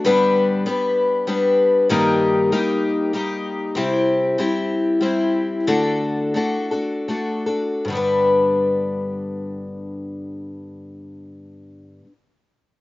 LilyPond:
\new Staff \with { instrumentName = "Twelve-string acoustic guitar" } { \time 3/4 \key g \major \tempo 4 = 89 <g, d g b d' b'>4 <g b d' b'>4 <g b d' b'>4 | <g, ees g bes ees' g'>4 <g bes ees' g'>4 <g bes ees' g'>4 | <c g c' e' g'>4 <g c' e' g'>4 <g c' e' g'>4 | <d a d' fis' a'>4 <a d' fis' a'>8 <d' fis' a'>8 <a d' fis' a'>8 <d' fis' a'>8 |
<g, d g b d' b'>2.~ | <g, d g b d' b'>2. | }